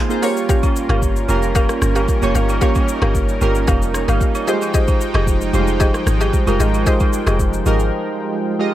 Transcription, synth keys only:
Already playing: A#3 D#4 F4 G#4 C5
0.09 A#3 D#4 F4 G#4 C5
0.22 A#3 C#4 F4 G4 C#5
1.28 A#3 C#4 F4 G4 A#4
2.22 A#3 C#4 F4 G4 C#5
2.61 A#3 C#4 F4 G4 C#5
3.41 A#3 C#4 F4 G4 A#4
3.95 F4 C#5
4.09 F5
4.35 F4 C#5
4.47 G3 D#4 F4 G4 C5
4.53 G#3
5.53 G3 D#4 F4 G4 C5
5.60 G#3
6.47 G#3 D#4 F4 G4 A#4
6.86 G#3 D#4 F4 G4 C5
7.66 G#3 D#4 F4 G4 A#4
8.59 G#3 D#4 F4 G4 D#5

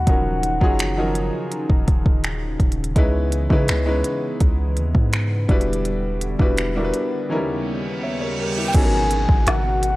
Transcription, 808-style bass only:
0.07 D#1
0.61 F#1
1.70 D#1
2.60 D#1
2.96 C#2
3.50 C#3
3.69 C#2
4.41 C#2
4.77 D#2
4.95 G#2
5.49 E1
6.40 E1
8.75 G#1
9.29 G#1
9.47 G#1

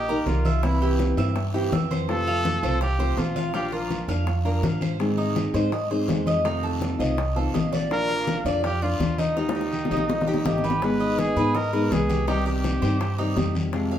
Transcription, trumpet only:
Already playing: G4
0.27 F4
0.64 E4
0.82 E4
2.10 A4
2.82 G4
3.18 F4
3.55 G4
3.73 F4
7.93 A#4
8.65 G4
8.83 F4
9.19 D#4
10.46 G4
10.83 B4
11.19 G#4
11.56 A#4
11.93 G#4
12.29 G4
12.47 G4

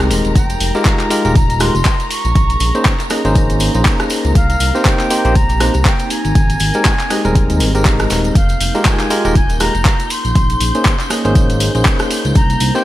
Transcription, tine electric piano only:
Already playing: G#3 C4 D#4 G4 A#4
0.75 G#3 D#4 F4 G4 A#4
1.10 G#3 D#4 F4 G4 A#4
1.25 G#3 D#4 F4 G4 A#4
1.60 G#3 D#4 F4 G4 A#4
2.75 A#3 C#4 D#4 G#4 C5
3.10 A#3 C#4 D#4 G#4 D#5
3.25 A#3 C#4 D#4 G#4 C5
3.74 A#3 C#4 D#4 G#4 C5
4.75 A#3 C4 D#4 G4 C5
5.10 A#3 C4 D#4 G4 C5
5.25 A#3 C4 D#4 G4 C5
5.60 A#3 C4 D#4 G4 C5
6.75 G#3 C4 D#4 G4 A#4
7.10 G#3 C4 D#4 G4 D#5
7.25 G3 G#3 C4 D#4 A#4
7.74 G#3 C4 D#4 G4 A#4
8.75 G#3 D#4 F4 G4 A#4
9.10 G#3 D#4 F4 G4 A#4
9.25 G#3 D#4 F4 G4 A#4
9.60 G#3 D#4 F4 G4 A#4
10.75 A#3 C#4 D#4 G#4 C5
11.10 A#3 C#4 D#4 G#4 D#5
11.25 A#3 C#4 D#4 G#4 C5
11.74 A#3 C#4 D#4 G#4 C5
12.75 A#3 C4 D#4 G4 C5

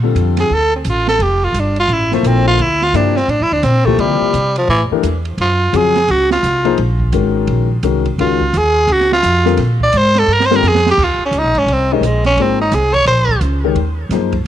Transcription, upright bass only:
Already playing: A#2
0.15 F2
0.50 D2
0.85 A1
1.19 F1
1.52 G1
1.88 A1
2.23 A#1
2.58 D2
2.93 G2
3.28 A2
3.40 F2
3.51 D2
3.63 A#2
3.98 D3
4.21 muted upright bass stroke
4.33 C3
4.68 A2
4.91 muted upright bass stroke
5.03 E2
5.38 F#2
5.73 F2
6.08 C#2
6.43 C2
6.78 A#1
7.13 G#1
7.47 A#1
7.83 C2
8.18 C#2
8.53 D#2
8.87 C#2
9.23 F2
9.58 A#2
9.93 G#2
10.27 G2
10.62 F2
10.97 D#2
11.19 muted upright bass stroke
11.31 C#2
11.44 A#1
11.55 G#1
11.66 C2
12.01 A#1
12.37 G#1
12.72 C2
13.05 A#1
13.41 C#2
13.75 D#2
14.09 F#2

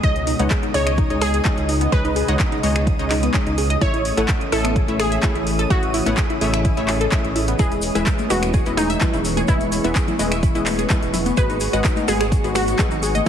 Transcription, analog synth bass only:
0.04 C#2
0.39 C#2
0.74 C#2
1.10 C#2
1.58 C#2
1.92 C#2
2.28 C#2
2.63 C#2
2.99 C#2
3.46 C#2
3.81 A1
4.17 A1
4.52 A1
4.88 A1
5.35 A1
5.70 A1
6.06 A1
6.41 A1
6.77 A1
7.24 A1
7.59 E1
7.95 E1
8.30 E1
8.66 E1
9.13 E1
9.48 E1
9.84 E1
10.19 E1
10.55 E1
11.02 E1
11.37 G#1
11.73 G#1
12.08 G#1
12.44 G#1
12.91 G#1

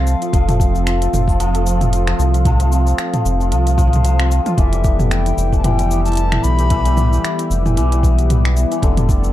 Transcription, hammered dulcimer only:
Already playing: F3 A3 C4 F4
0.22 F3
0.34 F3
0.49 A3
0.61 C4
0.87 F4
1.02 F3
1.28 F3
1.40 F3
1.55 A3
1.67 C4
1.93 F4
2.07 F3
2.34 F3
2.46 F3
2.61 A3
2.72 C4
2.99 F4
3.13 F3
3.40 F3
3.52 F3
3.66 A3
3.78 F3
3.93 C5
4.04 F3
4.20 C4
4.46 F4
4.58 E3
4.73 G3
4.85 B3
5.11 E4
5.26 E4
5.53 E3
5.64 E3
5.79 G3
5.91 B3
6.17 E4
6.33 E4
6.59 E3
6.71 E3
6.85 G3
6.97 B3
7.24 E4
7.39 E4
7.65 E3
7.77 E3
7.92 G3
8.04 B3
8.30 E4
8.45 E4
8.72 E3
8.83 D3
8.98 G3
9.10 A3

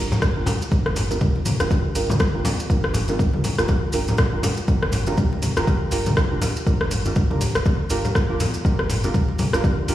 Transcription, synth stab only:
Already playing: D4 F4 G4 A#4
0.36 D4 F4 G4 A#4
0.71 D4 F4 G4 A#4
1.11 D4 F4 G4 A#4
1.60 D4 F4 G4 A#4
1.95 D4 F4 G4 A#4
2.34 D4 F4 G4 A#4
2.70 D4 F4 G4 A#4
3.09 D4 F4 G4 A#4
3.58 D4 F4 G4 A#4
3.94 D4 F4 G4 A#4
4.33 D4 F4 G4 A#4
4.68 D4 F4 G4 A#4
5.07 D4 F4 G4 A#4
5.57 D4 F4 G4 A#4
5.92 D4 F4 G4 A#4
6.31 D4 F4 G4 A#4
6.66 D4 F4 G4 A#4
7.06 D4 F4 G4 A#4
7.30 D4 F4 G4 A#4
7.90 D4 F4 G4 A#4
8.30 D4 F4 G4 A#4
8.65 D4 F4 G4 A#4
9.04 D4 F4 G4 A#4
9.54 D4 F4 G4 A#4
9.89 D4 F4 G4 A#4

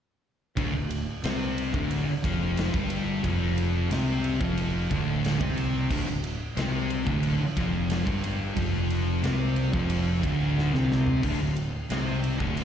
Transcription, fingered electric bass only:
0.58 D1
0.75 D1
1.25 C2
1.74 D1
2.08 muted fingered electric bass stroke
2.25 F1
2.74 G1
3.24 F1
3.91 C2
4.41 F1
4.91 D1
5.41 C2
5.91 D1
6.08 D1
6.57 C2
7.07 D1
7.41 muted fingered electric bass stroke
7.57 F1
8.07 G1
8.57 F1
9.25 C2
9.74 F1
10.24 D1
10.74 C2
11.24 D1
11.40 D1
11.90 C2
12.41 D1

